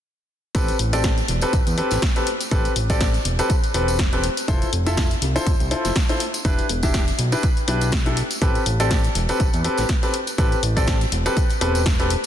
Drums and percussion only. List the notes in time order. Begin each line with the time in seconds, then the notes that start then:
0.55 kick, closed hi-hat, tambourine
0.68 closed hi-hat, tambourine
0.79 open hi-hat
0.93 closed hi-hat, tambourine
1.04 kick, snare, closed hi-hat, tambourine
1.18 closed hi-hat, tambourine
1.28 open hi-hat
1.41 closed hi-hat, tambourine
1.53 kick, closed hi-hat, tambourine
1.67 closed hi-hat, tambourine
1.78 open hi-hat
1.91 snare, closed hi-hat, tambourine
2.02 kick, snare, closed hi-hat
2.16 closed hi-hat, tambourine
2.27 open hi-hat
2.41 closed hi-hat, tambourine
2.51 kick, closed hi-hat
2.65 closed hi-hat, tambourine
2.76 open hi-hat
2.90 kick, closed hi-hat, tambourine
3.01 kick, snare, closed hi-hat, tambourine
3.14 closed hi-hat, tambourine
3.25 open hi-hat
3.39 closed hi-hat, tambourine
3.50 kick, closed hi-hat, tambourine
3.64 closed hi-hat, tambourine
3.74 open hi-hat
3.88 closed hi-hat, tambourine
3.99 kick, snare, closed hi-hat
4.13 closed hi-hat, tambourine
4.24 open hi-hat
4.37 closed hi-hat, tambourine
4.48 kick, closed hi-hat, tambourine
4.62 closed hi-hat, tambourine
4.73 open hi-hat
4.86 closed hi-hat, tambourine
4.97 kick, snare, closed hi-hat, tambourine
5.10 closed hi-hat, tambourine
5.22 open hi-hat
5.36 closed hi-hat, tambourine
5.46 kick, closed hi-hat, tambourine
5.60 closed hi-hat, tambourine
5.71 open hi-hat
5.85 snare, closed hi-hat, tambourine
5.96 kick, snare, closed hi-hat, tambourine
6.09 closed hi-hat, tambourine
6.20 open hi-hat
6.34 closed hi-hat, tambourine
6.45 kick, closed hi-hat, tambourine
6.59 closed hi-hat, tambourine
6.69 open hi-hat
6.83 kick, closed hi-hat, tambourine
6.94 kick, snare, closed hi-hat, tambourine
7.08 closed hi-hat, tambourine
7.19 open hi-hat
7.32 closed hi-hat, tambourine
7.43 kick, closed hi-hat, tambourine
7.57 closed hi-hat, tambourine
7.68 open hi-hat
7.81 closed hi-hat, tambourine
7.92 kick, snare, closed hi-hat, tambourine
8.06 closed hi-hat, tambourine
8.17 open hi-hat
8.31 closed hi-hat, tambourine
8.42 kick, closed hi-hat, tambourine
8.55 closed hi-hat, tambourine
8.66 open hi-hat
8.80 closed hi-hat, tambourine
8.91 kick, snare, closed hi-hat, tambourine
9.04 closed hi-hat, tambourine
9.15 open hi-hat
9.29 closed hi-hat, tambourine
9.40 kick, closed hi-hat, tambourine
9.53 closed hi-hat, tambourine
9.64 open hi-hat
9.77 snare, closed hi-hat, tambourine
9.89 kick, snare, closed hi-hat, tambourine
10.03 closed hi-hat, tambourine
10.14 open hi-hat
10.27 closed hi-hat, tambourine
10.38 kick, closed hi-hat, tambourine
10.52 closed hi-hat, tambourine
10.63 open hi-hat
10.77 kick, closed hi-hat, tambourine
10.87 kick, snare, closed hi-hat, tambourine
11.01 closed hi-hat, tambourine
11.12 open hi-hat
11.26 closed hi-hat, tambourine
11.37 kick, closed hi-hat, tambourine
11.49 closed hi-hat, tambourine
11.61 open hi-hat
11.75 closed hi-hat, tambourine
11.86 kick, snare, closed hi-hat
12.00 closed hi-hat, tambourine
12.10 open hi-hat